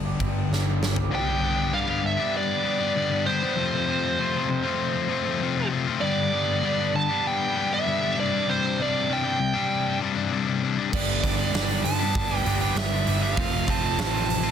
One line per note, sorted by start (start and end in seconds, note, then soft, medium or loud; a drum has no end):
0.00 0.16 G1 medium
0.00 1.09 G2 medium
0.00 1.10 D3 loud
0.00 1.11 G3 medium
0.00 0.21 G4 medium
0.05 0.17 G3 medium
0.05 0.19 B3 medium
0.05 0.20 D4 medium
0.19 0.47 G1 medium
0.19 0.50 G3 medium
0.19 0.50 B3 medium
0.19 0.51 D4 medium
0.19 0.51 G4 medium
0.19 kick medium
0.19 ride medium
0.49 0.77 G1 medium
0.49 0.96 G2 medium
0.49 0.96 D3 medium
0.49 0.67 G3 loud
0.49 0.66 B3 loud
0.49 0.66 D4 loud
0.49 0.64 G4 medium
0.49 snare medium
0.65 0.80 G3 medium
0.65 0.81 B3 medium
0.65 0.82 D4 medium
0.65 0.83 G4 medium
0.81 1.08 G1 medium
0.81 0.98 G3 medium
0.81 0.98 B3 medium
0.81 0.96 D4 medium
0.81 0.95 G4 medium
0.81 snare medium
0.96 1.12 G3 medium
0.96 1.11 B3 medium
0.96 1.10 D4 medium
0.96 1.10 G4 medium
0.96 floor tom medium
1.11 1.71 G2 loud
1.11 1.72 D3 loud
1.11 1.40 G3 medium
1.11 1.41 B3 medium
1.11 1.42 D4 loud
1.11 1.43 G4 loud
1.15 1.77 G5 loud
1.41 1.72 G3 medium
1.41 1.73 B3 medium
1.41 1.74 D4 medium
1.41 1.74 G4 medium
1.72 2.19 G2 medium
1.72 2.19 D3 medium
1.72 1.89 G3 medium
1.72 1.88 B3 medium
1.72 1.87 D4 loud
1.72 1.86 G4 loud
1.72 2.05 F5 loud
1.87 2.02 G3 medium
1.87 2.02 B3 medium
1.87 2.02 D4 medium
1.87 2.03 G4 medium
2.03 2.36 E5 medium
2.03 muted overdriven electric guitar stroke soft
2.17 2.63 G3 medium
2.17 2.64 B3 medium
2.17 2.65 D4 medium
2.17 2.66 G4 medium
2.37 3.31 D5 medium
2.64 2.82 G3 medium
2.64 2.80 B3 medium
2.64 2.80 D4 medium
2.64 2.79 G4 medium
2.80 2.95 G3 medium
2.80 2.96 B3 medium
2.80 2.96 D4 medium
2.80 2.97 G4 medium
2.95 3.42 G2 medium
2.95 3.42 D3 loud
2.95 3.13 G3 medium
2.95 3.12 B3 loud
2.95 3.11 D4 loud
2.95 3.10 G4 medium
3.11 3.25 G3 medium
3.11 3.26 B3 medium
3.11 3.27 D4 medium
3.11 3.28 G4 medium
3.26 3.43 G3 medium
3.26 3.42 B3 medium
3.26 3.41 D4 medium
3.26 3.40 G4 medium
3.26 5.68 C5 medium
3.41 3.56 G3 medium
3.41 3.56 B3 medium
3.41 3.56 D4 medium
3.41 3.55 G4 medium
3.55 4.17 F2 loud
3.55 4.17 C3 loud
3.55 3.86 F3 loud
3.55 3.87 A3 loud
3.55 3.88 C4 loud
3.55 3.89 F4 loud
3.87 4.18 F3 medium
3.87 4.18 A3 medium
3.87 4.19 C4 medium
3.87 4.20 F4 medium
4.18 4.64 F2 medium
4.18 4.65 C3 loud
4.18 4.35 F3 medium
4.18 4.34 A3 loud
4.18 4.33 C4 loud
4.18 4.31 F4 loud
4.33 4.48 F3 medium
4.33 4.49 A3 medium
4.33 4.48 C4 medium
4.33 4.49 F4 medium
4.49 muted overdriven electric guitar stroke soft
4.63 5.08 F3 medium
4.63 5.09 A3 medium
4.63 5.10 C4 medium
4.63 5.11 F4 medium
5.09 5.27 F3 medium
5.09 5.26 A3 medium
5.09 5.25 C4 medium
5.09 5.24 F4 medium
5.25 5.41 F3 medium
5.25 5.41 A3 medium
5.25 5.42 C4 medium
5.25 5.42 F4 medium
5.41 5.87 F2 medium
5.41 5.87 C3 loud
5.41 5.58 F3 medium
5.41 5.57 A3 medium
5.41 5.56 C4 loud
5.41 5.54 F4 loud
5.55 5.69 F3 medium
5.55 5.71 A3 medium
5.55 5.72 C4 medium
5.55 5.72 F4 medium
5.71 5.89 F3 medium
5.71 5.87 A3 medium
5.71 5.86 C4 medium
5.71 5.85 F4 loud
5.87 6.02 F3 medium
5.87 6.01 A3 medium
5.87 6.01 C4 medium
5.87 6.00 F4 medium
6.01 6.61 G2 loud
6.01 6.62 D3 loud
6.01 6.32 G3 loud
6.01 6.33 B3 loud
6.01 6.34 D4 loud
6.01 6.35 G4 loud
6.01 6.97 D5 loud
6.33 6.64 G3 medium
6.33 6.63 B3 medium
6.33 6.65 D4 medium
6.33 6.65 G4 medium
6.63 7.09 G2 loud
6.63 7.10 D3 medium
6.63 6.81 G3 loud
6.63 6.80 B3 loud
6.63 6.80 D4 loud
6.63 6.78 G4 loud
6.79 6.94 G3 medium
6.79 6.93 B3 medium
6.79 6.94 D4 medium
6.79 6.95 G4 medium
6.94 7.27 A5 loud
6.94 muted overdriven electric guitar stroke soft
7.09 7.54 G3 medium
7.09 7.55 B3 medium
7.09 7.56 D4 medium
7.09 7.58 G4 medium
7.27 7.74 G5 loud
7.55 7.74 G3 medium
7.55 7.72 B3 medium
7.55 7.72 D4 medium
7.55 7.70 G4 medium
7.71 7.87 G3 medium
7.71 7.87 B3 medium
7.71 7.88 D4 medium
7.71 7.89 G4 medium
7.71 8.19 E5 loud
7.86 8.15 G2 medium
7.86 8.15 D3 medium
7.86 8.04 G3 medium
7.86 8.02 B3 loud
7.86 8.03 D4 loud
7.86 8.01 G4 loud
8.02 8.18 G3 medium
8.02 8.16 B3 medium
8.02 8.19 D4 medium
8.02 8.19 G4 medium
8.16 8.46 C2 medium
8.16 8.47 G2 loud
8.16 8.33 C3 loud
8.16 8.33 G3 loud
8.16 8.31 D4 loud
8.16 8.50 D5 medium
8.32 8.48 C3 medium
8.32 8.49 G3 medium
8.32 8.50 D4 medium
8.47 9.08 C2 medium
8.47 8.77 G2 medium
8.47 8.78 C3 loud
8.47 8.79 G3 loud
8.47 8.80 D4 loud
8.47 8.80 C5 medium
8.78 9.08 G2 medium
8.78 9.09 C3 medium
8.78 9.11 G3 medium
8.78 9.11 D4 medium
8.82 9.12 D5 medium
9.09 9.55 C2 medium
9.09 9.38 G2 medium
9.09 9.26 C3 medium
9.09 9.25 G3 loud
9.09 9.23 D4 loud
9.09 9.99 G5 medium
9.23 9.38 C3 medium
9.23 9.40 G3 medium
9.23 9.40 D4 medium
9.39 muted overdriven electric guitar stroke soft
9.54 10.00 C3 medium
9.54 10.01 G3 medium
9.54 10.02 D4 medium
9.99 10.31 G2 medium
9.99 10.17 C3 medium
9.99 10.15 G3 medium
9.99 10.14 D4 medium
10.15 10.31 C3 medium
10.15 10.32 G3 medium
10.15 10.32 D4 medium
10.31 10.77 C2 medium
10.31 10.60 G2 medium
10.31 10.49 C3 loud
10.31 10.47 G3 medium
10.31 10.46 D4 medium
10.47 10.61 C3 medium
10.47 10.62 G3 medium
10.47 10.63 D4 medium
10.61 10.90 G2 medium
10.61 10.79 C3 medium
10.61 10.77 G3 medium
10.61 10.76 D4 medium
10.77 10.92 C3 medium
10.77 10.92 G3 medium
10.77 10.91 D4 medium
10.92 11.23 G1 loud
10.92 11.51 G2 loud
10.92 11.52 D3 loud
10.92 11.22 G3 medium
10.92 11.23 B3 loud
10.92 11.24 D4 loud
10.92 11.25 G4 loud
10.92 11.88 D5 medium
10.92 kick loud
10.92 crash loud
11.23 11.53 G1 medium
11.23 11.52 G3 medium
11.23 11.53 B3 medium
11.23 11.54 D4 medium
11.23 11.54 G4 medium
11.23 kick loud
11.23 open hi-hat medium
11.52 11.84 G1 medium
11.52 11.99 G2 medium
11.52 11.99 D3 loud
11.52 11.70 G3 medium
11.52 11.70 B3 loud
11.52 11.68 D4 loud
11.52 11.67 G4 loud
11.52 snare loud
11.52 open hi-hat medium
11.68 11.83 G3 medium
11.68 11.83 B3 medium
11.68 11.83 D4 medium
11.68 11.83 G4 medium
11.84 12.14 G2 medium
11.84 12.37 A5 loud
11.84 muted overdriven electric guitar stroke soft
11.84 muted distorted electric guitar stroke medium
11.84 open hi-hat medium
11.99 12.43 G3 medium
11.99 12.45 B3 medium
11.99 12.46 D4 medium
11.99 12.47 G4 medium
12.15 12.45 G1 medium
12.15 kick loud
12.15 open hi-hat medium
12.31 12.45 G3 medium
12.31 12.46 B3 medium
12.31 12.47 D4 medium
12.31 12.47 G4 medium
12.37 12.57 G5 loud
12.45 12.75 G1 loud
12.45 12.63 G3 medium
12.45 12.62 B3 medium
12.45 12.61 D4 medium
12.45 12.60 G4 medium
12.45 open hi-hat medium
12.61 12.75 G3 medium
12.61 12.76 B3 medium
12.61 12.76 D4 medium
12.61 12.77 G4 medium
12.61 12.77 G5 medium
12.75 13.06 G1 medium
12.75 13.22 G2 loud
12.75 13.22 D3 medium
12.75 12.94 G3 medium
12.75 12.93 B3 medium
12.75 12.92 D4 medium
12.75 12.91 G4 loud
12.75 13.22 E5 medium
12.75 snare loud
12.92 13.05 G3 medium
12.92 13.06 B3 medium
12.92 13.07 D4 medium
12.92 13.08 G4 medium
13.06 13.37 G1 medium
13.06 13.24 G3 medium
13.06 13.23 B3 medium
13.06 13.22 D4 medium
13.06 13.21 G4 medium
13.06 open hi-hat medium
13.22 13.37 G3 medium
13.22 13.37 B3 medium
13.22 13.36 D4 medium
13.22 13.36 G4 medium
13.22 13.34 E5 medium
13.34 13.97 F1 medium
13.34 13.95 F2 loud
13.34 13.96 C3 loud
13.34 13.70 F5 medium
13.34 kick loud
13.34 open hi-hat medium
13.38 13.65 F3 loud
13.38 13.66 A3 loud
13.38 13.67 C4 loud
13.38 13.68 F4 loud
13.66 13.97 F3 medium
13.66 13.98 A3 medium
13.66 13.98 C4 medium
13.66 13.99 F4 medium
13.66 14.51 A5 medium
13.66 kick medium
13.66 open hi-hat medium
13.97 14.51 A1 medium
13.97 14.44 F2 medium
13.97 14.44 C3 medium
13.97 14.14 F3 loud
13.97 14.14 A3 medium
13.97 14.12 C4 medium
13.97 14.12 F4 loud
13.97 snare loud
13.97 open hi-hat medium
14.13 14.28 F3 medium
14.13 14.27 A3 medium
14.13 14.28 C4 medium
14.13 14.28 F4 medium
14.29 muted overdriven electric guitar stroke soft
14.29 muted distorted electric guitar stroke medium
14.29 open hi-hat medium
14.44 14.51 F3 medium
14.44 14.51 A3 medium
14.44 14.51 C4 medium
14.44 14.51 F4 medium